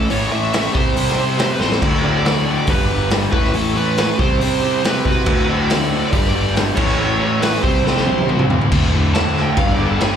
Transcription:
Already playing: overdriven electric guitar A3
0.08 picked electric bass A1, overdriven electric guitar A2 E3 A3, lead electric guitar A4 C#5, open hi-hat
0.30 overdriven electric guitar A2 E3 A3, lead electric guitar A4 E5
0.53 overdriven electric guitar A2 E3 A3, snare, open hi-hat
0.72 picked electric bass C2, overdriven electric guitar C3 G3 C4, lead electric guitar G4 C5, kick
0.95 overdriven electric guitar C3 G3 C4, picked electric bass C3, open hi-hat
1.09 snare
1.17 overdriven electric guitar C3 G3 C4
1.38 overdriven electric guitar C3 G3 C4, lead electric guitar G4 C5, snare, open hi-hat
1.54 lead electric guitar G4 B4
1.59 picked electric bass A1, overdriven electric guitar C3 G3 C4, lead electric guitar A4 C5, snare
1.72 snare
1.81 overdriven electric guitar D2 A2 D3, picked electric bass D2, lead electric guitar A4 D5, kick, crash
2.02 overdriven electric guitar D2 A2 D3, lead electric guitar A4 D5
2.24 overdriven electric guitar D2 A2 D3, snare, open hi-hat
2.46 overdriven electric guitar D2 A2 D3
2.67 picked electric bass G1, overdriven electric guitar G2 D3 G3, lead electric guitar G4 B4, kick, open hi-hat
2.89 overdriven electric guitar G2 D3 G3
3.10 overdriven electric guitar G2 D3 G3, snare, open hi-hat
3.32 picked electric bass A1, overdriven electric guitar A2 E3 A3, lead electric guitar E4 B4, kick
3.44 snare
3.53 picked electric bass A1, overdriven electric guitar A2 E3 A3, lead electric guitar E4 A4, open hi-hat
3.75 overdriven electric guitar A2 E3 A3, lead electric guitar E4 B4
3.97 overdriven electric guitar A2 E3 A3, snare, open hi-hat
4.18 picked electric bass C2, overdriven electric guitar C3 G3 C4, lead electric guitar G4 C5, kick
4.40 picked electric bass C3, overdriven electric guitar C3 G3 C4, open hi-hat
4.61 overdriven electric guitar C3 G3 C4
4.84 overdriven electric guitar C3 G3 C4, lead electric guitar G4 B4, snare, open hi-hat
5.05 picked electric bass C2, overdriven electric guitar C3 G3 C4, lead electric guitar F#4 B4, kick
5.26 picked electric bass D2, overdriven electric guitar D2 A2 D3, kick, crash
5.48 overdriven electric guitar D2 A2 D3, lead electric guitar A4 D5
5.69 overdriven electric guitar D2 A2 D3, snare, open hi-hat
5.92 overdriven electric guitar D2 A2 D3
6.12 picked electric bass G1, overdriven electric guitar G2 D3 G3, lead electric guitar G4 D5, kick, open hi-hat
6.25 snare
6.35 overdriven electric guitar G2 D3 G3
6.55 overdriven electric guitar G2 D3 G3, snare, open hi-hat
6.75 picked electric bass A1, overdriven electric guitar A2 E3 A3, lead electric guitar A4 C#5, kick, crash
6.89 snare
6.97 picked electric bass A1, overdriven electric guitar A2 E3 A3
7.19 overdriven electric guitar A2 E3 A3
7.40 overdriven electric guitar A2 E3 A3, lead electric guitar E4 B4, snare, open hi-hat
7.62 picked electric bass C2, overdriven electric guitar C3 G3 C4, lead electric guitar G4 C5, kick
7.84 overdriven electric guitar C3 G3 C4, picked electric bass C3, snare
7.97 snare
8.05 picked electric bass B1, overdriven electric guitar C3 G3 C4, high tom
8.18 high tom
8.27 picked electric bass C2, overdriven electric guitar C3 G3 C4, mid tom
8.39 mid tom
8.48 picked electric bass D2, overdriven electric guitar C3 G3 C4, floor tom
8.61 floor tom
8.70 overdriven electric guitar D2 A2 D3, picked electric bass D2, kick, crash
8.91 overdriven electric guitar D2 A2 D3
9.13 overdriven electric guitar D2 A2 D3, lead electric guitar A5, snare, crash
9.34 overdriven electric guitar D2 A2 D3, snare
9.42 lead electric guitar G5
9.57 picked electric bass G1, overdriven electric guitar G2 D3 G3, lead electric guitar F5, kick, crash
9.72 lead electric guitar D5
9.77 overdriven electric guitar G2 D3 G3
9.86 lead electric guitar A4
9.99 overdriven electric guitar G2 D3 G3, lead electric guitar G#4, snare, crash

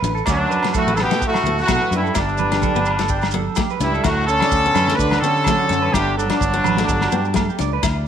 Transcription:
Already playing: clean electric guitar B4
0.02 fingered electric bass A1, steel-string acoustic guitar D4, muted conga, maracas
0.15 clean electric guitar A4, maracas
0.26 fingered electric bass D2, trombone F#2, horn section F#3 D4, steel-string acoustic guitar E4, clean electric guitar D5, kick, snare, muted conga, low agogo, maracas
0.49 clean electric guitar B4, muted conga, high conga, maracas
0.63 steel-string acoustic guitar D4, snare, low agogo
0.74 trombone A2, horn section A3 F#4, clean electric guitar A4, kick, snare, high conga, maracas
0.87 fingered electric bass A1, steel-string acoustic guitar B3, clean electric guitar B4, maracas
0.94 trombone C#3, horn section A4, low agogo, maracas
0.98 trombone B2, horn section B3, snare
1.03 horn section G4
1.10 steel-string acoustic guitar A3, clean electric guitar A4, snare, maracas
1.21 clean electric guitar F#4, kick, muted conga, maracas
1.25 trombone A2, horn section A3 F#4
1.34 snare, low agogo, maracas
1.44 fingered electric bass D2, steel-string acoustic guitar B3, clean electric guitar A4, maracas
1.58 trombone A2, horn section A3 F#4, snare, maracas
1.68 fingered electric bass B2, steel-string acoustic guitar A3, clean electric guitar A4, kick, snare, high conga, low agogo, maracas
1.80 clean electric guitar B4, maracas
1.91 fingered electric bass F#2, trombone G2, horn section G3, steel-string acoustic guitar D4, muted conga, maracas
1.95 horn section E4
2.04 clean electric guitar A4, maracas
2.14 fingered electric bass G1, horn section G3, steel-string acoustic guitar E4, clean electric guitar D5, kick, snare, muted conga, low agogo, maracas
2.19 trombone G2, horn section D4
2.29 maracas
2.38 clean electric guitar B4, muted conga, high conga, maracas
2.51 steel-string acoustic guitar D4, snare, low agogo, maracas
2.62 clean electric guitar A4, kick, high conga, low conga, maracas
2.75 fingered electric bass G1, steel-string acoustic guitar B3, clean electric guitar B4, maracas
2.85 low agogo, maracas
2.99 steel-string acoustic guitar A3, clean electric guitar A4, snare, maracas
3.08 clean electric guitar G4, kick, muted conga, maracas
3.21 snare, low agogo, maracas
3.31 steel-string acoustic guitar B3, clean electric guitar A4, high conga, maracas
3.56 steel-string acoustic guitar A3, clean electric guitar G4, kick, snare, high conga, low agogo, maracas
3.70 clean electric guitar B4, maracas
3.80 fingered electric bass C#2, trombone G2, horn section G3 E4, steel-string acoustic guitar D4, snare, maracas
3.94 clean electric guitar A4, maracas
4.04 fingered electric bass D2, trombone A2, horn section A3 F#4, steel-string acoustic guitar E4, kick, snare, crash, muted conga, low agogo, maracas
4.27 trombone D3, horn section C#4 A4, clean electric guitar A4, maracas
4.40 steel-string acoustic guitar D4, clean electric guitar D5, snare, low agogo, maracas
4.51 fingered electric bass D2, kick, maracas
4.65 steel-string acoustic guitar B3, maracas
4.75 fingered electric bass F#2, clean electric guitar B4, snare, high conga, low agogo, maracas
4.88 steel-string acoustic guitar A3, clean electric guitar A4, snare, maracas
4.96 fingered electric bass D2, trombone D3, horn section D4 B4, kick
5.00 muted conga, maracas
5.11 clean electric guitar F#4, snare, low agogo
5.20 fingered electric bass D3, trombone D3, horn section C#4 A4, clean electric guitar G4
5.24 steel-string acoustic guitar B3, maracas
5.36 maracas
5.44 steel-string acoustic guitar A3, clean electric guitar A4, kick, snare, high conga, low agogo, maracas
5.58 clean electric guitar F#4, maracas
5.68 fingered electric bass F#2, steel-string acoustic guitar D4, clean electric guitar C#5, snare
5.72 muted conga, high conga, maracas
5.82 clean electric guitar B4
5.92 fingered electric bass G1, trombone D3, horn section D4 G4, steel-string acoustic guitar E4, kick, snare, muted conga, low agogo, maracas
6.16 trombone G2, horn section F#3 D4, clean electric guitar A4, muted conga, maracas
6.29 steel-string acoustic guitar D4, clean electric guitar D5, snare, low agogo, maracas
6.41 fingered electric bass G1, kick, maracas
6.54 steel-string acoustic guitar B3, maracas
6.64 fingered electric bass A1, clean electric guitar B4, high conga, low agogo, maracas
6.77 steel-string acoustic guitar A3, clean electric guitar A4, snare, maracas
6.88 fingered electric bass G1, kick, muted conga, maracas
7.01 clean electric guitar F#4, snare, low agogo
7.12 fingered electric bass G2, steel-string acoustic guitar B3, clean electric guitar G4, maracas
7.25 maracas
7.34 steel-string acoustic guitar A3, clean electric guitar A4, kick, snare, high conga, low agogo, maracas
7.49 clean electric guitar G4, maracas
7.59 fingered electric bass C#2, steel-string acoustic guitar D4, clean electric guitar D5, snare, muted conga, maracas
7.73 clean electric guitar B4
7.83 fingered electric bass D2, steel-string acoustic guitar E4, kick, snare, muted conga, low agogo, maracas

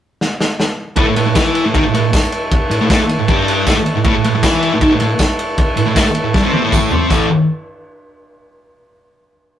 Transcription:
0.21 snare
0.41 snare
0.60 snare
0.96 distorted electric guitar A2 A3, transistor combo organ E4 A4 C#5, kick, ride
1.07 distorted electric guitar A2
1.16 distorted electric guitar A2, ride
1.26 distorted electric guitar A2
1.35 distorted electric guitar E3 E4, kick, snare, ride, tambourine
1.55 ride
1.65 distorted electric guitar A2
1.74 distorted electric guitar D#3 D#4, kick, ride
1.84 distorted electric guitar A2
1.94 distorted electric guitar A2, ride
2.13 kick, snare, ride, tambourine
2.32 ride
2.52 kick, ride
2.71 distorted electric guitar A2, ride
2.81 distorted electric guitar A2
2.90 distorted electric guitar A2 A3, kick, snare, ride, tambourine
3.00 muted distorted electric guitar stroke
3.09 ride
3.19 distorted electric guitar A2
3.28 distorted electric guitar G2 G3, kick, ride
3.48 ride
3.67 distorted electric guitar A2 A3, kick, snare, ride, tambourine
3.77 muted distorted electric guitar stroke
3.86 ride
3.96 distorted electric guitar A2
4.04 distorted electric guitar A2 A3, transistor combo organ E4 A4 C#5, kick, ride
4.16 distorted electric guitar A2
4.24 distorted electric guitar A2, ride
4.35 distorted electric guitar A2
4.43 distorted electric guitar E3 E4, kick, snare, ride, tambourine
4.63 ride
4.74 distorted electric guitar A2
4.81 distorted electric guitar D#3 D#4, kick, ride
4.93 distorted electric guitar A2
5.00 distorted electric guitar A2, ride
5.19 kick, snare, ride, tambourine
5.39 ride
5.58 kick, ride
5.77 distorted electric guitar A2, ride
5.87 distorted electric guitar A2
5.96 distorted electric guitar A2 A3, kick, snare, ride, tambourine
6.06 muted distorted electric guitar stroke
6.15 ride
6.24 distorted electric guitar A2
6.33 distorted electric guitar G2 G3, kick, snare
6.43 distorted electric guitar C3 C4
6.53 high tom
6.63 distorted electric guitar A2 A3
6.72 kick, mid tom, tambourine
6.91 distorted electric guitar C3 C4, floor tom
7.10 distorted electric guitar A2 E3 A3, transistor combo organ E4 A4 C#5, kick, tambourine, crash

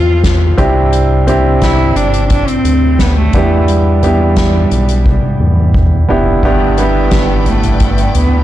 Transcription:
Already playing: analog synth bass E2, grand piano F3 C4 E4 C5, cello F4
0.24 kick, snare, closed hi-hat
0.58 analog synth bass C2, grand piano C3 C4 D4 E4 G4, kick, closed hi-hat, floor tom
0.93 closed hi-hat
1.27 grand piano C4 D4 E4 G4, closed hi-hat, floor tom
1.61 cello E4, kick, snare, closed hi-hat
1.95 analog synth bass G1, cello D4, closed hi-hat
2.14 closed hi-hat
2.30 cello D4, kick, closed hi-hat
2.47 cello C4, closed hi-hat
2.65 analog synth bass D2, closed hi-hat
2.99 cello B3, kick, snare, closed hi-hat
3.17 cello A3
3.33 analog synth bass E2, grand piano E3 B3 D4 E4 G4, kick, closed hi-hat, floor tom
3.68 cello G3, closed hi-hat
4.03 grand piano B3 D4 E4 G4, closed hi-hat, floor tom
4.36 kick, snare, closed hi-hat
4.71 analog synth bass B1, closed hi-hat
4.89 closed hi-hat
5.06 kick, high tom
5.23 high tom
5.40 analog synth bass E2, mid tom
5.57 mid tom
5.74 kick, mid tom
5.91 mid tom
6.08 analog synth bass F1, grand piano B3 D4 E4 G4, floor tom
6.26 floor tom
6.43 analog synth bass G1, grand piano G2 B3 D4 E4 G4, string section E4 B4 D5 G5, kick, crash
6.77 grand piano B3 D4 E4 G4, cello B3, closed hi-hat
7.11 kick, snare, closed hi-hat
7.46 cello A3, closed hi-hat, floor tom
7.63 closed hi-hat, floor tom
7.80 kick, closed hi-hat
7.98 closed hi-hat
8.15 analog synth bass D2, cello B3, closed hi-hat, floor tom

